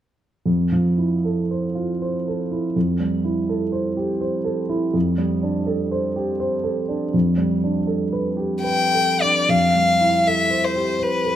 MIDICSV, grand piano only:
0, 0, Header, 1, 2, 480
1, 0, Start_track
1, 0, Tempo, 781250
1, 275, Time_signature, 3, 2, 24, 8
1, 1233, Tempo, 734394
1, 5073, Tempo, 777202
1, 5553, Tempo, 834492
1, 6033, Tempo, 751880
1, 7223, End_track
2, 0, Start_track
2, 0, Title_t, "Grand piano"
2, 0, Program_c, 0, 0
2, 280, Note_on_c, 0, 41, 33
2, 405, Control_c, 0, 64, 127
2, 444, Note_on_c, 0, 53, 28
2, 600, Note_on_c, 0, 64, 26
2, 698, Note_off_c, 0, 53, 0
2, 765, Note_on_c, 0, 69, 29
2, 854, Note_off_c, 0, 64, 0
2, 926, Note_on_c, 0, 72, 29
2, 1016, Note_off_c, 0, 69, 0
2, 1077, Note_on_c, 0, 65, 30
2, 1174, Note_off_c, 0, 72, 0
2, 1240, Note_on_c, 0, 72, 32
2, 1332, Note_off_c, 0, 65, 0
2, 1411, Note_on_c, 0, 69, 31
2, 1499, Note_off_c, 0, 72, 0
2, 1564, Note_on_c, 0, 64, 30
2, 1663, Note_off_c, 0, 69, 0
2, 1696, Note_off_c, 0, 41, 0
2, 1722, Note_off_c, 0, 64, 0
2, 1726, Note_on_c, 0, 41, 39
2, 1731, Control_c, 0, 64, 0
2, 1850, Control_c, 0, 64, 127
2, 1883, Note_on_c, 0, 55, 30
2, 2042, Note_on_c, 0, 64, 32
2, 2138, Note_off_c, 0, 55, 0
2, 2204, Note_on_c, 0, 69, 35
2, 2297, Note_off_c, 0, 64, 0
2, 2354, Note_on_c, 0, 72, 33
2, 2455, Note_off_c, 0, 69, 0
2, 2514, Note_on_c, 0, 67, 34
2, 2608, Note_off_c, 0, 72, 0
2, 2673, Note_on_c, 0, 72, 39
2, 2769, Note_off_c, 0, 67, 0
2, 2827, Note_on_c, 0, 69, 38
2, 2930, Note_off_c, 0, 72, 0
2, 2989, Note_on_c, 0, 64, 40
2, 3088, Note_off_c, 0, 69, 0
2, 3133, Note_off_c, 0, 41, 0
2, 3148, Note_on_c, 0, 41, 44
2, 3154, Note_off_c, 0, 64, 0
2, 3166, Control_c, 0, 64, 0
2, 3280, Control_c, 0, 64, 127
2, 3306, Note_on_c, 0, 55, 36
2, 3469, Note_on_c, 0, 62, 39
2, 3570, Note_off_c, 0, 55, 0
2, 3624, Note_on_c, 0, 69, 40
2, 3728, Note_off_c, 0, 62, 0
2, 3788, Note_on_c, 0, 72, 40
2, 3883, Note_off_c, 0, 69, 0
2, 3946, Note_on_c, 0, 67, 39
2, 4044, Note_off_c, 0, 72, 0
2, 4104, Note_on_c, 0, 72, 44
2, 4203, Note_off_c, 0, 67, 0
2, 4259, Note_on_c, 0, 69, 38
2, 4362, Note_off_c, 0, 72, 0
2, 4422, Note_on_c, 0, 62, 36
2, 4519, Note_off_c, 0, 69, 0
2, 4558, Note_off_c, 0, 41, 0
2, 4585, Note_off_c, 0, 62, 0
2, 4588, Note_on_c, 0, 41, 44
2, 4598, Control_c, 0, 64, 0
2, 4714, Control_c, 0, 64, 127
2, 4741, Note_on_c, 0, 55, 35
2, 4913, Note_on_c, 0, 62, 33
2, 5003, Note_off_c, 0, 55, 0
2, 5066, Note_on_c, 0, 69, 35
2, 5168, Note_off_c, 0, 62, 0
2, 5223, Note_on_c, 0, 71, 37
2, 5322, Note_off_c, 0, 69, 0
2, 5374, Note_on_c, 0, 67, 32
2, 5484, Note_off_c, 0, 71, 0
2, 5537, Note_on_c, 0, 71, 34
2, 5640, Note_off_c, 0, 67, 0
2, 5713, Note_on_c, 0, 69, 30
2, 5804, Note_off_c, 0, 71, 0
2, 5881, Note_on_c, 0, 62, 28
2, 5972, Note_off_c, 0, 69, 0
2, 6009, Note_off_c, 0, 41, 0
2, 6030, Note_on_c, 0, 41, 34
2, 6035, Note_off_c, 0, 62, 0
2, 6043, Control_c, 0, 64, 0
2, 6142, Control_c, 0, 64, 127
2, 6194, Note_on_c, 0, 55, 27
2, 6359, Note_on_c, 0, 64, 28
2, 6455, Note_off_c, 0, 55, 0
2, 6526, Note_on_c, 0, 69, 29
2, 6617, Note_off_c, 0, 64, 0
2, 6677, Note_on_c, 0, 72, 30
2, 6780, Note_off_c, 0, 69, 0
2, 6837, Note_on_c, 0, 67, 27
2, 6934, Note_off_c, 0, 72, 0
2, 6990, Note_on_c, 0, 72, 32
2, 7090, Note_off_c, 0, 67, 0
2, 7151, Note_on_c, 0, 69, 29
2, 7223, Note_off_c, 0, 41, 0
2, 7223, Note_off_c, 0, 69, 0
2, 7223, Note_off_c, 0, 72, 0
2, 7223, End_track
0, 0, End_of_file